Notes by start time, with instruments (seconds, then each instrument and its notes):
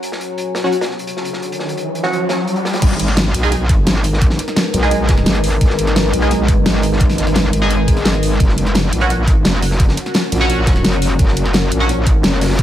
Already playing: synth stab F#3 C#4 F#4, ambient pad F#4 C#5 G#5 A#5
0.03 closed hi-hat, riser
0.12 snare
0.21 closed hi-hat
0.38 closed hi-hat
0.55 snare, closed hi-hat
0.64 synth stab F#3 C#4 F#4, snare
0.72 closed hi-hat
0.81 snare, closed hi-hat
0.90 snare
0.99 closed hi-hat
1.07 closed hi-hat
1.17 snare
1.25 closed hi-hat
1.33 snare
1.43 closed hi-hat
1.52 closed hi-hat
1.59 snare
1.69 closed hi-hat
1.77 closed hi-hat
1.95 closed hi-hat
2.03 synth stab F#3 C#4 F#4, snare
2.13 closed hi-hat
2.29 synth stab F#3 C#4 F#4, snare, closed hi-hat
2.47 closed hi-hat
2.56 closed hi-hat
2.65 snare, closed hi-hat
2.73 snare, closed hi-hat
2.82 wobble bass G#1, ambient pad G#3 D#4 A#4 B4, kick, closed hi-hat, crash
2.91 snare
3.00 wobble bass G#1, closed hi-hat
3.08 snare
3.17 snare, closed hi-hat
3.34 wobble bass B1, closed hi-hat
3.43 synth stab G#3 D#4 G#4, closed hi-hat
3.52 snare, closed hi-hat
3.69 kick, closed hi-hat
3.87 wobble bass G#1, snare, closed hi-hat
3.95 snare
4.04 closed hi-hat, open hi-hat
4.13 snare
4.21 kick, closed hi-hat
4.30 snare
4.39 closed hi-hat
4.48 snare
4.56 snare, closed hi-hat
4.73 wobble bass B1, closed hi-hat
4.83 synth stab G#3 D#4 G#4, snare
4.91 closed hi-hat
5.08 kick, snare, closed hi-hat
5.18 snare
5.26 wobble bass G#1, snare, closed hi-hat
5.35 snare, closed hi-hat
5.44 closed hi-hat, open hi-hat
5.61 wobble bass G#1, kick, closed hi-hat
5.70 snare
5.79 wobble bass G#1, closed hi-hat
5.87 snare
5.96 snare, closed hi-hat
6.13 wobble bass B1, closed hi-hat
6.22 synth stab G#3 D#4 G#4, closed hi-hat
6.31 snare, closed hi-hat
6.48 kick, closed hi-hat
6.66 wobble bass G#1, snare, closed hi-hat
6.75 snare
6.82 closed hi-hat, open hi-hat
6.93 snare
7.00 kick, closed hi-hat
7.09 snare, closed hi-hat
7.18 wobble bass G#1, snare, closed hi-hat
7.27 snare, closed hi-hat
7.35 snare, closed hi-hat
7.53 wobble bass G#1, closed hi-hat
7.62 synth stab G#3 D#4 G#4, snare
7.70 closed hi-hat
7.88 kick, closed hi-hat
7.97 snare, closed hi-hat
8.05 snare, closed hi-hat
8.14 snare
8.23 closed hi-hat, open hi-hat
8.40 wobble bass F#1, ambient pad C#4 F#4 A#4, kick, closed hi-hat
8.49 snare
8.58 wobble bass F#1, closed hi-hat
8.67 snare
8.75 snare, closed hi-hat
8.92 wobble bass A#1, closed hi-hat
9.01 synth stab F#3 C#4 F#4, closed hi-hat
9.10 snare, closed hi-hat
9.27 kick, closed hi-hat
9.45 wobble bass F#1, snare, closed hi-hat
9.54 snare
9.62 closed hi-hat, open hi-hat
9.71 snare
9.80 kick, closed hi-hat
9.89 snare
9.97 closed hi-hat
10.06 snare
10.14 snare, closed hi-hat
10.32 wobble bass A#1, closed hi-hat
10.41 synth stab F#3 C#4 F#4, snare
10.50 closed hi-hat
10.66 kick, snare, closed hi-hat
10.76 snare
10.84 wobble bass F#1, snare, closed hi-hat
10.93 snare, closed hi-hat
11.02 closed hi-hat, open hi-hat
11.19 wobble bass F#1, ambient pad G#4, kick, closed hi-hat
11.28 snare
11.37 wobble bass F#1, closed hi-hat
11.46 snare
11.53 snare, closed hi-hat
11.72 wobble bass A#1, closed hi-hat
11.80 synth stab F#3 C#4 F#4, closed hi-hat
11.89 snare, closed hi-hat
12.06 kick, closed hi-hat
12.23 wobble bass F#1, snare, closed hi-hat
12.33 snare
12.41 snare, closed hi-hat, open hi-hat
12.46 snare, closed hi-hat
12.50 snare, closed hi-hat
12.55 snare, closed hi-hat
12.59 kick, closed hi-hat